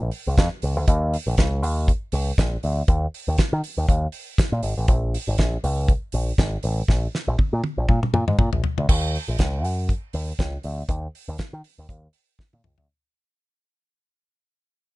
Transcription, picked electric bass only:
0.02 A#1
0.27 C#2
0.38 F2
0.63 C#2
0.77 D2
0.88 D#2
1.27 A#1
1.38 C#2
1.62 D#2
2.13 C#2
2.38 A#1
2.64 D2
2.88 D#2
3.28 D#2
3.53 D#3
3.77 D#2
3.88 D#2
4.52 A#2
4.63 G#1
4.78 A1
4.88 A#1
5.28 G#1
5.39 A#1
5.64 C#2
6.14 A#1
6.38 G#1
6.64 A1
6.89 A#1
7.28 A#1
7.39 muted picked electric bass stroke
7.53 A#2
7.78 A#1
7.89 A#2
8.14 A#2
8.28 G#2
8.39 A#2
8.53 A#1
8.78 D2
8.89 D#2
9.28 A#1
9.39 C#2
9.64 F#2
10.14 D#2
10.39 C#2
10.64 D2
10.89 D#2
11.28 D#2
11.53 D#3
11.78 D#2
11.89 D#2
12.53 A#2
12.65 C#2
12.78 D2

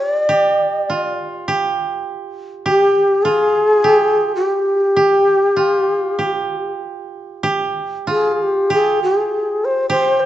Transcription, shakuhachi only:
0.00 C#5
0.12 D5
2.68 G4
3.23 G#4
4.36 G4
8.10 G#4
8.31 G#4
8.43 G4
8.74 G#4
9.03 G4
9.16 G#4
9.65 C5
9.90 C5
10.20 D5

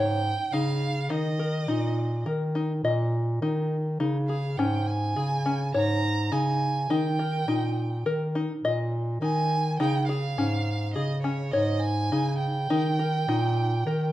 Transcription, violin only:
Already playing: G5
0.52 F5
1.10 D#5
4.29 F5
4.58 G5
4.86 G#5
5.75 A#5
6.32 G#5
6.90 G5
9.22 G#5
9.79 G5
10.07 F5
10.94 D#5
11.22 C#5
11.51 D#5
11.80 G#5
12.38 G5

